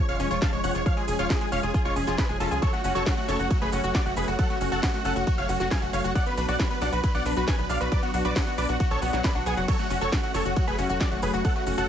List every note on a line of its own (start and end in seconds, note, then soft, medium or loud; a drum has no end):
0.00 2.59 F3 medium
0.00 2.59 G#3 medium
0.00 6.11 C#4 loud
0.09 0.17 F1 medium
0.09 0.14 G#3 medium
0.09 0.17 C#5 medium
0.09 0.17 F5 loud
0.09 0.17 F6 loud
0.09 closed hi-hat medium
0.20 0.28 F1 loud
0.20 0.25 C#4 loud
0.20 0.28 C#5 medium
0.20 0.28 C#6 medium
0.20 open hi-hat loud
0.20 shaker medium
0.31 0.39 F1 medium
0.31 0.39 F4 loud
0.31 0.39 C#5 medium
0.31 0.39 C#6 medium
0.31 closed hi-hat medium
0.31 shaker soft
0.42 0.47 F3 medium
0.42 0.50 F5 medium
0.42 0.50 A5 loud
0.42 0.50 A6 medium
0.42 kick loud
0.42 snare loud
0.42 closed hi-hat medium
0.42 shaker soft
0.53 0.61 F1 medium
0.53 0.58 G#3 medium
0.53 0.61 C#5 medium
0.53 0.61 C#6 medium
0.53 closed hi-hat medium
0.64 0.72 F1 loud
0.64 0.72 C#4 medium
0.64 0.72 C#5 medium
0.64 0.72 F#5 medium
0.64 0.72 F#6 medium
0.64 open hi-hat loud
0.64 shaker medium
0.75 0.83 F1 medium
0.75 0.78 F4 medium
0.75 0.83 C#5 medium
0.75 0.83 C#6 medium
0.75 closed hi-hat medium
0.75 shaker soft
0.86 0.92 F3 medium
0.86 0.94 C#5 medium
0.86 0.94 F5 loud
0.86 0.94 F6 loud
0.86 kick loud
0.86 closed hi-hat medium
0.86 shaker soft
0.97 1.03 G#3 medium
0.97 1.05 G#4 medium
0.97 1.05 G#5 medium
0.97 closed hi-hat medium
1.08 1.17 F1 loud
1.08 1.14 C#4 medium
1.08 1.16 G#4 medium
1.08 1.16 G#5 medium
1.08 open hi-hat loud
1.08 shaker medium
1.19 1.27 F1 medium
1.19 1.27 F4 loud
1.19 1.27 C#5 medium
1.19 1.27 F5 medium
1.19 1.27 F6 loud
1.19 closed hi-hat soft
1.19 shaker soft
1.30 1.33 F3 medium
1.30 1.38 G#4 medium
1.30 1.38 G#5 medium
1.30 kick loud
1.30 snare loud
1.30 closed hi-hat medium
1.30 shaker soft
1.41 1.45 G#3 medium
1.41 1.49 G#4 medium
1.41 1.49 G#5 medium
1.41 closed hi-hat soft
1.52 1.61 F1 medium
1.52 1.58 C#4 loud
1.52 1.60 C#5 medium
1.52 1.60 F5 loud
1.52 1.60 F6 loud
1.52 open hi-hat loud
1.52 shaker medium
1.63 1.72 F1 medium
1.63 1.67 F4 medium
1.63 1.71 G#4 medium
1.63 1.71 G#5 medium
1.63 closed hi-hat medium
1.63 shaker soft
1.74 1.83 F4 loud
1.74 1.82 G#4 medium
1.74 1.82 G#5 medium
1.74 kick loud
1.74 closed hi-hat medium
1.74 shaker soft
1.85 1.94 F1 medium
1.85 1.91 G#3 medium
1.85 1.93 F4 medium
1.85 1.93 C#5 loud
1.85 1.93 C#6 loud
1.85 closed hi-hat soft
1.96 2.05 F1 loud
1.96 2.02 C#4 medium
1.96 2.05 G#4 medium
1.96 2.04 G#5 medium
1.96 open hi-hat loud
1.96 shaker medium
2.07 2.16 F1 medium
2.07 2.16 F4 loud
2.07 2.16 G#4 medium
2.07 2.15 G#5 medium
2.07 snare soft
2.07 closed hi-hat medium
2.07 shaker soft
2.18 2.27 F3 medium
2.18 2.27 G#4 medium
2.18 2.27 B4 medium
2.18 2.26 B5 medium
2.18 kick loud
2.18 snare loud
2.18 closed hi-hat medium
2.18 shaker soft
2.29 2.38 F1 medium
2.29 2.33 G#3 medium
2.29 2.38 G#4 medium
2.29 2.38 G#5 medium
2.29 closed hi-hat medium
2.40 2.49 F1 loud
2.40 2.46 C#4 loud
2.40 2.49 F4 medium
2.40 2.49 A4 medium
2.40 2.48 A5 medium
2.40 open hi-hat loud
2.40 shaker medium
2.51 2.60 C#2 medium
2.51 2.57 F4 medium
2.51 2.60 G#4 medium
2.51 2.59 G#5 medium
2.51 closed hi-hat medium
2.51 shaker soft
2.62 2.66 F#3 loud
2.62 9.64 F#3 medium
2.62 6.12 A3 medium
2.62 2.71 A4 medium
2.62 2.71 C#5 loud
2.62 2.70 C#6 loud
2.62 kick loud
2.62 closed hi-hat medium
2.62 ride medium
2.62 shaker soft
2.73 2.79 A3 medium
2.73 2.82 F#4 medium
2.73 2.81 F#5 medium
2.73 closed hi-hat medium
2.84 2.93 F#1 loud
2.84 2.90 C#4 loud
2.84 2.93 F#4 medium
2.84 2.92 F#5 medium
2.84 open hi-hat loud
2.84 shaker medium
2.95 3.04 F#1 medium
2.95 3.04 F#4 loud
2.95 3.04 A4 medium
2.95 3.04 C#5 loud
2.95 3.03 C#6 loud
2.95 closed hi-hat soft
2.95 shaker soft
3.06 3.12 F#3 medium
3.06 3.15 F#4 medium
3.06 3.15 F#5 medium
3.06 kick loud
3.06 snare loud
3.06 closed hi-hat medium
3.06 ride medium
3.06 shaker soft
3.17 3.23 A3 medium
3.17 3.26 F#4 medium
3.17 3.26 F#5 medium
3.17 closed hi-hat medium
3.28 3.37 F#1 medium
3.28 3.34 C#4 medium
3.28 3.37 A4 medium
3.28 3.37 C#5 loud
3.28 3.37 C#6 loud
3.28 snare soft
3.28 open hi-hat loud
3.28 shaker medium
3.39 3.48 F#1 medium
3.39 3.48 F#4 medium
3.39 3.45 F#4 medium
3.39 3.48 F#5 medium
3.39 closed hi-hat soft
3.39 shaker soft
3.50 3.59 F#3 medium
3.50 3.59 F#4 medium
3.50 3.59 F#5 medium
3.50 kick loud
3.50 closed hi-hat medium
3.50 ride medium
3.50 shaker soft
3.62 3.70 F#1 medium
3.62 3.67 A3 medium
3.62 3.70 G#4 medium
3.62 3.70 B4 loud
3.62 3.70 B5 loud
3.62 closed hi-hat medium
3.73 3.81 F#1 loud
3.73 3.78 C#4 loud
3.73 3.81 F#4 medium
3.73 3.81 F#5 medium
3.73 open hi-hat loud
3.73 shaker medium
3.84 3.92 F#1 medium
3.84 3.92 F#4 loud
3.84 3.92 F#4 medium
3.84 3.92 F#5 medium
3.84 closed hi-hat medium
3.84 shaker soft
3.95 4.00 F#3 medium
3.95 4.03 F#4 medium
3.95 4.03 D5 medium
3.95 4.03 D6 medium
3.95 kick loud
3.95 snare loud
3.95 closed hi-hat medium
3.95 ride medium
3.95 shaker soft
4.06 4.14 F#1 medium
4.06 4.11 A3 medium
4.06 4.14 F#4 medium
4.06 4.14 F#5 medium
4.06 closed hi-hat medium
4.17 4.25 F#1 loud
4.17 4.25 C#4 medium
4.17 4.25 G#4 medium
4.17 4.25 B4 medium
4.17 4.25 B5 medium
4.17 open hi-hat medium
4.17 shaker medium
4.28 4.36 F#1 medium
4.28 4.31 F#4 medium
4.28 4.36 F#4 medium
4.28 4.36 F#5 medium
4.28 closed hi-hat medium
4.28 shaker soft
4.39 4.44 F#3 medium
4.39 4.47 A4 medium
4.39 4.47 F#5 loud
4.39 4.47 F#6 loud
4.39 kick loud
4.39 closed hi-hat medium
4.39 ride medium
4.39 shaker soft
4.50 4.56 A3 medium
4.50 4.58 F#4 medium
4.50 4.58 F#5 medium
4.50 closed hi-hat medium
4.61 4.69 F#1 loud
4.61 4.66 C#4 medium
4.61 4.69 F#4 medium
4.61 4.69 F#5 medium
4.61 open hi-hat loud
4.61 shaker medium
4.72 4.80 F#1 medium
4.72 4.80 F#4 loud
4.72 4.80 A4 medium
4.72 4.80 F#5 medium
4.72 4.80 F#6 medium
4.72 closed hi-hat soft
4.72 shaker soft
4.83 4.86 F#3 medium
4.83 4.91 F#4 medium
4.83 4.91 F#5 medium
4.83 kick loud
4.83 snare loud
4.83 closed hi-hat medium
4.83 ride medium
4.83 shaker soft
4.94 4.97 A3 medium
4.94 5.02 F#4 medium
4.94 5.02 F#5 medium
4.94 closed hi-hat medium
5.05 5.14 F#1 loud
5.05 5.11 C#4 loud
5.05 5.13 A4 medium
5.05 5.13 F#5 loud
5.05 5.13 F#6 medium
5.05 open hi-hat medium
5.05 shaker medium
5.16 5.25 F#1 medium
5.16 5.19 F#4 medium
5.16 5.24 F#4 medium
5.16 5.24 F#5 medium
5.16 closed hi-hat medium
5.16 shaker soft
5.27 5.35 F#4 loud
5.27 5.35 F#4 medium
5.27 5.35 F#5 medium
5.27 kick loud
5.27 closed hi-hat medium
5.27 ride medium
5.27 shaker soft
5.38 5.47 F#1 medium
5.38 5.44 A3 medium
5.38 5.46 C#5 medium
5.38 5.46 F5 loud
5.38 5.46 F6 loud
5.38 closed hi-hat soft
5.49 5.58 F#1 loud
5.49 5.55 C#4 medium
5.49 5.57 F#4 medium
5.49 5.57 F#5 medium
5.49 open hi-hat loud
5.49 shaker medium
5.60 5.69 F#1 medium
5.60 5.68 F#4 medium
5.60 5.68 F#4 loud
5.60 5.68 F#5 medium
5.60 snare soft
5.60 closed hi-hat medium
5.60 shaker soft
5.71 5.80 F#3 loud
5.71 5.79 F5 medium
5.71 5.79 G#5 medium
5.71 5.79 G#6 medium
5.71 kick loud
5.71 snare loud
5.71 closed hi-hat medium
5.71 ride medium
5.71 shaker soft
5.82 5.91 F#1 medium
5.82 5.86 A3 medium
5.82 5.90 F#4 medium
5.82 5.90 F#5 medium
5.82 closed hi-hat medium
5.93 6.02 F#1 loud
5.93 5.99 C#4 loud
5.93 6.01 C#5 medium
5.93 6.01 F5 medium
5.93 6.02 F6 medium
5.93 open hi-hat medium
5.93 shaker medium
6.04 6.13 F#1 medium
6.04 6.13 F#4 medium
6.04 6.10 F#4 medium
6.04 6.12 F#5 medium
6.04 closed hi-hat medium
6.04 shaker soft
6.15 6.19 F#3 loud
6.15 9.65 B3 medium
6.15 9.65 D4 loud
6.15 6.24 D5 medium
6.15 6.24 F#5 loud
6.15 6.24 F#6 loud
6.15 kick loud
6.15 closed hi-hat medium
6.15 ride medium
6.15 shaker soft
6.26 6.32 B3 medium
6.26 6.35 B4 medium
6.26 6.35 B5 medium
6.26 closed hi-hat medium
6.37 6.46 B1 medium
6.37 6.43 D4 loud
6.37 6.46 B4 medium
6.37 6.46 B5 medium
6.37 open hi-hat loud
6.37 shaker medium
6.48 6.57 B1 medium
6.48 6.57 F#4 loud
6.48 6.57 D5 medium
6.48 6.57 F#5 loud
6.48 6.57 F#6 loud
6.48 closed hi-hat medium
6.48 shaker soft
6.60 6.65 F#3 medium
6.60 6.68 B4 medium
6.60 6.68 B5 medium
6.60 kick loud
6.60 snare loud
6.60 closed hi-hat medium
6.60 ride medium
6.60 shaker soft
6.71 6.76 B3 medium
6.71 6.79 B4 medium
6.71 6.79 B5 medium
6.71 closed hi-hat medium
6.82 6.90 B1 loud
6.82 6.87 D4 medium
6.82 6.90 D5 medium
6.82 6.90 F#5 medium
6.82 6.90 F#6 loud
6.82 snare soft
6.82 open hi-hat medium
6.82 shaker medium
6.92 7.01 B1 medium
6.92 6.98 F#4 medium
6.92 7.01 B4 medium
6.92 7.01 B5 medium
6.92 closed hi-hat medium
6.92 shaker soft
7.03 7.12 F#3 medium
7.03 7.12 B4 medium
7.03 7.12 B5 medium
7.03 kick loud
7.03 closed hi-hat medium
7.03 ride medium
7.03 shaker soft
7.15 7.23 B1 medium
7.15 7.20 B3 medium
7.15 7.23 D5 medium
7.15 7.23 F#5 loud
7.15 7.23 F#6 loud
7.15 closed hi-hat medium
7.26 7.34 B1 loud
7.26 7.31 D4 loud
7.26 7.34 B4 medium
7.26 7.34 B5 medium
7.26 open hi-hat loud
7.26 shaker medium
7.36 7.45 B1 medium
7.36 7.45 F#4 loud
7.36 7.45 B4 medium
7.36 7.45 B5 medium
7.36 closed hi-hat medium
7.36 shaker soft
7.47 7.53 F#3 medium
7.47 7.56 B4 medium
7.47 7.56 G#5 medium
7.47 7.56 G#6 medium
7.47 kick loud
7.47 snare loud
7.47 closed hi-hat medium
7.47 ride medium
7.47 shaker soft
7.59 7.67 B1 medium
7.59 7.64 B3 medium
7.59 7.67 B4 medium
7.59 7.67 B5 medium
7.59 closed hi-hat medium
7.69 7.78 B1 loud
7.69 7.78 D4 medium
7.69 7.78 D5 medium
7.69 7.78 F5 medium
7.69 7.78 F6 medium
7.69 open hi-hat medium
7.69 shaker medium
7.81 7.89 B1 medium
7.81 7.84 F#4 medium
7.81 7.89 B4 medium
7.81 7.89 B5 medium
7.81 closed hi-hat medium
7.81 shaker soft
7.92 7.97 F#3 medium
7.92 8.00 B4 medium
7.92 8.00 D5 loud
7.92 8.00 D6 loud
7.92 kick loud
7.92 closed hi-hat medium
7.92 ride medium
7.92 shaker soft
8.03 8.08 B3 medium
8.03 8.11 F#4 medium
8.03 8.11 F#5 medium
8.03 closed hi-hat medium
8.14 8.22 B1 medium
8.14 8.19 D4 medium
8.14 8.22 F#4 medium
8.14 8.22 F#5 medium
8.14 open hi-hat loud
8.14 shaker medium
8.25 8.33 B1 medium
8.25 8.33 F#4 loud
8.25 8.33 B4 medium
8.25 8.33 D5 medium
8.25 8.33 D6 loud
8.25 closed hi-hat medium
8.25 shaker soft
8.36 8.39 F#3 medium
8.36 8.44 F#4 medium
8.36 8.44 F#5 medium
8.36 kick loud
8.36 snare loud
8.36 closed hi-hat medium
8.36 ride medium
8.36 shaker soft
8.47 8.50 B3 medium
8.47 8.55 F#4 medium
8.47 8.55 F#5 medium
8.47 closed hi-hat medium
8.58 8.67 B1 medium
8.58 8.64 D4 loud
8.58 8.66 B4 medium
8.58 8.66 D5 medium
8.58 8.66 D6 loud
8.58 open hi-hat loud
8.58 shaker medium
8.69 8.78 B1 medium
8.69 8.77 F#4 medium
8.69 8.72 F#4 medium
8.69 8.77 F#5 medium
8.69 closed hi-hat medium
8.69 shaker soft
8.80 8.88 F#4 medium
8.80 8.88 F#4 loud
8.80 8.88 F#5 medium
8.80 kick loud
8.80 closed hi-hat medium
8.80 ride medium
8.80 shaker soft
8.91 9.00 B1 medium
8.91 8.97 B3 medium
8.91 8.99 A4 medium
8.91 8.99 C#5 loud
8.91 8.99 C#6 loud
8.91 closed hi-hat medium
9.02 9.11 B1 loud
9.02 9.10 B3 loud
9.02 9.10 F#4 medium
9.02 9.10 F#5 medium
9.02 open hi-hat loud
9.02 shaker medium
9.13 9.22 B1 medium
9.13 9.19 F#3 loud
9.13 9.21 F#4 medium
9.13 9.21 F#5 medium
9.13 snare soft
9.13 closed hi-hat medium
9.13 shaker soft
9.24 9.32 D4 medium
9.24 9.32 B4 medium
9.24 9.32 B5 medium
9.24 kick loud
9.24 snare loud
9.24 closed hi-hat medium
9.24 ride medium
9.24 shaker soft
9.35 9.44 B1 medium
9.35 9.41 D4 loud
9.35 9.43 F#4 medium
9.35 9.43 F#5 medium
9.35 closed hi-hat medium
9.46 9.55 B1 loud
9.46 9.54 B3 medium
9.46 9.54 G#4 medium
9.46 9.52 F#5 loud
9.46 9.55 G#5 medium
9.46 open hi-hat medium
9.46 shaker medium
9.57 9.66 F#1 medium
9.57 9.61 F#3 medium
9.57 9.65 F#4 medium
9.57 9.66 F#5 medium
9.57 closed hi-hat medium
9.57 shaker soft
9.68 9.72 F#3 loud
9.68 11.89 F#3 medium
9.68 11.89 A3 medium
9.68 11.89 C#4 medium
9.68 9.77 A4 medium
9.68 9.77 C#5 loud
9.68 9.77 C#6 loud
9.68 kick loud
9.68 closed hi-hat medium
9.68 ride medium
9.68 crash medium
9.68 shaker soft
9.79 9.85 A3 medium
9.79 9.88 F#4 medium
9.79 9.88 F#5 medium
9.79 closed hi-hat medium
9.90 9.99 F#1 medium
9.90 9.96 C#4 loud
9.90 9.99 F#4 medium
9.90 9.99 F#5 medium
9.90 open hi-hat loud
9.90 shaker medium
10.01 10.10 F#1 medium
10.01 10.10 F#4 loud
10.01 10.10 A4 medium
10.01 10.10 C#5 medium
10.01 10.10 C#6 loud
10.01 closed hi-hat medium
10.01 shaker soft
10.12 10.18 F#3 medium
10.12 10.21 F#4 medium
10.12 10.21 F#5 medium
10.12 kick loud
10.12 snare loud
10.12 closed hi-hat medium
10.12 ride medium
10.12 shaker soft
10.23 10.29 A3 medium
10.23 10.32 F#4 medium
10.23 10.32 F#5 medium
10.23 closed hi-hat medium
10.34 10.43 F#1 medium
10.34 10.40 C#4 medium
10.34 10.43 A4 medium
10.34 10.43 C#5 loud
10.34 10.43 C#6 medium
10.34 snare soft
10.34 open hi-hat loud
10.34 shaker medium
10.45 10.54 F#1 medium
10.45 10.51 F#4 medium
10.45 10.54 F#4 medium
10.45 10.54 F#5 medium
10.45 closed hi-hat medium
10.45 shaker soft
10.56 10.65 F#3 medium
10.56 10.65 F#4 medium
10.56 10.65 F#5 medium
10.56 kick loud
10.56 closed hi-hat medium
10.56 ride medium
10.56 shaker soft
10.67 10.76 F#1 medium
10.67 10.73 A3 medium
10.67 10.76 G#4 medium
10.67 10.76 B4 loud
10.67 10.76 B5 loud
10.67 closed hi-hat medium
10.78 10.87 F#1 medium
10.78 10.84 C#4 loud
10.78 10.87 F#4 medium
10.78 10.87 F#5 medium
10.78 open hi-hat loud
10.78 shaker medium
10.90 10.98 F#1 medium
10.90 10.98 F#4 loud
10.90 10.98 F#4 medium
10.90 10.98 F#5 medium
10.90 closed hi-hat medium
10.90 shaker soft
11.01 11.06 F#3 medium
11.01 11.09 F#4 medium
11.01 11.09 D5 medium
11.01 11.09 D6 loud
11.01 kick loud
11.01 snare loud
11.01 closed hi-hat medium
11.01 ride medium
11.01 shaker soft
11.12 11.20 F#1 medium
11.12 11.17 A3 medium
11.12 11.20 F#4 medium
11.12 11.20 F#5 medium
11.12 closed hi-hat medium
11.23 11.31 F#1 loud
11.23 11.31 C#4 medium
11.23 11.31 G#4 medium
11.23 11.31 B4 medium
11.23 11.31 B5 medium
11.23 open hi-hat medium
11.23 shaker medium
11.34 11.42 F#1 medium
11.34 11.37 F#4 medium
11.34 11.42 F#4 medium
11.34 11.42 F#5 medium
11.34 closed hi-hat medium
11.34 shaker soft
11.45 11.50 F#3 medium
11.45 11.53 A4 medium
11.45 11.53 F#5 loud
11.45 11.53 F#6 loud
11.45 kick loud
11.45 closed hi-hat medium
11.45 ride medium
11.45 shaker soft
11.56 11.61 A3 medium
11.56 11.64 F#4 medium
11.56 11.64 F#5 medium
11.56 closed hi-hat medium
11.67 11.75 F#1 medium
11.67 11.72 C#4 medium
11.67 11.75 F#4 medium
11.67 11.75 F#5 medium
11.67 open hi-hat loud
11.67 shaker medium
11.78 11.86 F#1 medium
11.78 11.86 F#4 loud
11.78 11.86 A4 medium
11.78 11.86 F#5 medium
11.78 11.86 F#6 loud
11.78 closed hi-hat medium
11.78 shaker soft